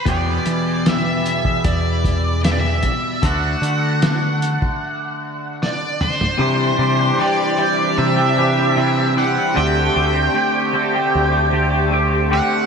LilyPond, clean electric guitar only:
\new Staff \with { instrumentName = "Clean electric guitar" } { \time 4/4 \key c \lydian \tempo 4 = 76 <e, b, e g b g'>1 | <d a d' fis'>1 | <c e g d' g'>8 <e g d' g'>16 <g d' g'>16 <c e g d' g'>8 <e g d' g'>16 <g d' g'>8 <g d' g'>16 <e g d' g'>16 <g d' g'>16 <c e g d' g'>16 <g d' g'>16 <e g d' g'>8 | <d a c' g'>8 <d a c' g'>16 <a c' g'>16 <d a c' g'>8 <d a c' g'>16 <a c' g'>8 <a c' g'>16 <d a c' g'>16 <a c' g'>16 <d a c' g'>16 <a c' g'>16 <d a c' g'>8 | }